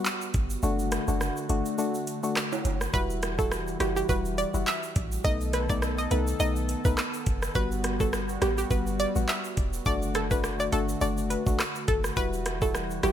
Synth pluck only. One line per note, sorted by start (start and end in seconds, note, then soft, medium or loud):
2.94 3.17 B4 loud
3.39 3.49 A4 medium
3.80 3.93 G4 medium
3.96 4.07 G4 medium
4.09 4.22 B4 medium
4.38 4.51 D5 medium
4.67 5.09 E5 medium
5.25 5.38 D#5 loud
5.54 5.67 B4 medium
5.70 5.80 D5 medium
5.98 6.09 D#5 medium
6.11 6.24 B4 medium
6.40 6.53 D#5 medium
6.85 6.95 B4 medium
7.55 7.79 B4 loud
8.00 8.11 A4 medium
8.42 8.55 G4 medium
8.58 8.68 G4 medium
8.71 8.84 B4 medium
9.00 9.13 D5 medium
9.29 9.71 E5 medium
9.86 9.99 D5 loud
10.15 10.28 A4 medium
10.31 10.41 B4 medium
10.60 10.70 D5 medium
10.72 10.86 A4 medium
11.01 11.15 D5 medium
11.30 11.43 B4 medium
11.88 12.01 A4 medium
12.17 12.40 B4 loud
12.62 12.72 A4 medium
13.03 13.12 G4 medium